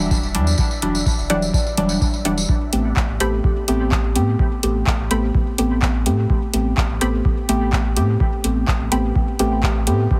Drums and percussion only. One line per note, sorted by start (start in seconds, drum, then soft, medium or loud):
0.11 kick loud
0.11 tambourine medium
0.23 tambourine soft
0.35 closed hi-hat medium
0.47 tambourine medium
0.58 kick loud
0.58 tambourine medium
0.71 tambourine soft
0.82 closed hi-hat medium
0.95 tambourine medium
1.06 kick loud
1.06 tambourine medium
1.19 tambourine soft
1.30 closed hi-hat medium
1.42 tambourine medium
1.54 kick loud
1.54 tambourine medium
1.67 tambourine soft
1.77 closed hi-hat medium
1.89 tambourine medium
2.01 kick loud
2.01 tambourine medium
2.14 tambourine soft
2.25 closed hi-hat medium
2.38 tambourine medium
2.49 kick loud
2.73 closed hi-hat medium
2.96 kick loud
2.96 clap medium
3.20 closed hi-hat medium
3.44 kick loud
3.68 closed hi-hat medium
3.92 kick loud
3.92 clap medium
4.16 closed hi-hat medium
4.39 kick loud
4.63 closed hi-hat medium
4.87 kick loud
4.87 clap medium
5.11 closed hi-hat medium
5.35 kick loud
5.58 closed hi-hat medium
5.82 kick loud
5.82 clap medium
6.06 closed hi-hat medium
6.30 kick loud
6.54 closed hi-hat medium
6.77 kick loud
6.77 clap medium
7.01 closed hi-hat medium
7.25 kick loud
7.49 closed hi-hat medium
7.73 kick loud
7.73 clap medium
7.96 closed hi-hat medium
8.20 kick loud
8.44 closed hi-hat medium
8.68 kick loud
8.68 clap medium
8.92 closed hi-hat medium
9.16 kick loud
9.39 closed hi-hat medium
9.63 kick loud
9.63 clap medium
9.87 closed hi-hat medium
10.11 kick loud